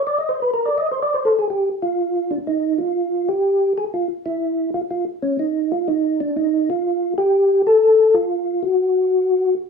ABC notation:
X:1
M:4/4
L:1/16
Q:"Swing" 1/4=124
K:Fdor
V:1 name="Tonewheel organ"
d e c _c B d e =c d c =A _A G2 F2- | F2 D2 E2 F4 G4 A2 | F2 _F4 =F2 F2 _D2 E2 F2 | E2 D2 E2 F4 G4 =A2- |
=A2 F4 _G8 z2 |]